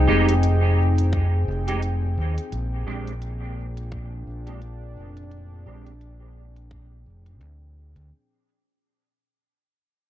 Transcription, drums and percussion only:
0.29 closed hi-hat soft
0.43 closed hi-hat soft
0.98 closed hi-hat soft
1.13 kick medium
1.13 closed hi-hat soft
1.68 closed hi-hat soft
1.82 closed hi-hat soft
2.38 closed hi-hat soft
2.52 closed hi-hat soft
3.07 closed hi-hat soft
3.22 closed hi-hat soft
3.77 closed hi-hat soft
3.92 kick medium
3.92 closed hi-hat soft
4.47 closed hi-hat soft
4.62 closed hi-hat soft
5.17 closed hi-hat soft
5.31 closed hi-hat soft
5.87 closed hi-hat soft
6.01 closed hi-hat soft
6.56 closed hi-hat soft
6.71 kick medium
6.71 closed hi-hat soft
7.26 closed hi-hat soft
7.41 closed hi-hat soft
7.96 closed hi-hat soft

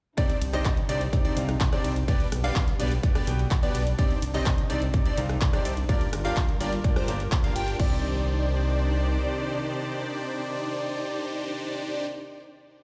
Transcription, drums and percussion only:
0.18 kick loud
0.18 closed hi-hat medium
0.30 closed hi-hat soft
0.42 open hi-hat loud
0.42 ride medium
0.53 closed hi-hat soft
0.65 kick loud
0.65 clap loud
0.65 closed hi-hat medium
0.77 closed hi-hat soft
0.89 open hi-hat loud
0.89 ride medium
1.01 closed hi-hat soft
1.13 kick loud
1.13 closed hi-hat medium
1.25 closed hi-hat soft
1.37 open hi-hat loud
1.37 ride medium
1.49 cross-stick medium
1.49 closed hi-hat soft
1.60 kick loud
1.60 clap loud
1.60 closed hi-hat medium
1.73 cross-stick medium
1.73 closed hi-hat soft
1.84 open hi-hat loud
1.84 ride medium
1.96 closed hi-hat soft
2.08 kick loud
2.08 closed hi-hat medium
2.20 closed hi-hat soft
2.32 cross-stick medium
2.32 open hi-hat loud
2.32 ride medium
2.44 closed hi-hat soft
2.56 kick loud
2.56 clap loud
2.56 closed hi-hat medium
2.68 closed hi-hat soft
2.80 open hi-hat loud
2.80 ride medium
2.92 closed hi-hat soft
3.03 kick loud
3.03 closed hi-hat medium
3.15 cross-stick medium
3.15 closed hi-hat soft
3.27 open hi-hat loud
3.27 ride medium
3.39 closed hi-hat soft
3.51 kick loud
3.51 clap loud
3.51 closed hi-hat medium
3.63 closed hi-hat soft
3.75 open hi-hat loud
3.75 ride medium
3.87 closed hi-hat soft
3.99 kick loud
3.99 closed hi-hat medium
4.11 closed hi-hat soft
4.22 open hi-hat loud
4.22 ride medium
4.34 closed hi-hat soft
4.46 kick loud
4.46 clap loud
4.46 closed hi-hat medium
4.58 closed hi-hat soft
4.70 open hi-hat loud
4.70 ride medium
4.82 closed hi-hat soft
4.94 kick loud
4.94 closed hi-hat medium
5.06 closed hi-hat soft
5.18 open hi-hat loud
5.18 ride medium
5.29 cross-stick medium
5.29 closed hi-hat soft
5.41 kick loud
5.41 clap loud
5.41 closed hi-hat medium
5.53 cross-stick medium
5.53 closed hi-hat soft
5.65 open hi-hat loud
5.65 ride medium
5.77 closed hi-hat soft
5.89 kick loud
5.89 closed hi-hat medium
6.01 closed hi-hat soft
6.13 cross-stick medium
6.13 open hi-hat loud
6.13 ride medium
6.25 closed hi-hat soft
6.37 kick loud
6.37 clap loud
6.37 closed hi-hat medium
6.49 closed hi-hat soft
6.61 open hi-hat loud
6.61 ride medium
6.72 closed hi-hat soft
6.84 kick loud
6.84 closed hi-hat medium
6.96 cross-stick medium
6.96 closed hi-hat soft
7.08 open hi-hat loud
7.08 ride medium
7.20 closed hi-hat soft
7.32 kick loud
7.32 clap loud
7.32 closed hi-hat medium
7.44 closed hi-hat soft
7.56 open hi-hat loud
7.56 ride medium
7.68 closed hi-hat soft
7.80 kick loud
7.80 crash medium

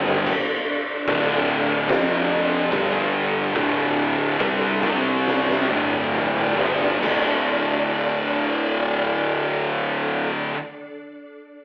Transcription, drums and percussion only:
0.06 floor tom loud
0.26 kick loud
0.26 crash medium
1.07 kick loud
1.07 crash medium
1.89 kick loud
1.89 snare loud
1.89 crash medium
2.72 kick loud
2.72 crash medium
3.56 kick medium
3.56 crash soft
4.40 kick loud
4.40 crash medium
4.83 kick loud
5.28 snare medium
5.50 snare medium
5.71 high tom medium
5.92 high tom medium
6.14 mid tom medium
6.36 mid tom medium
6.58 floor tom loud
6.80 floor tom medium
7.02 kick loud
7.02 crash medium

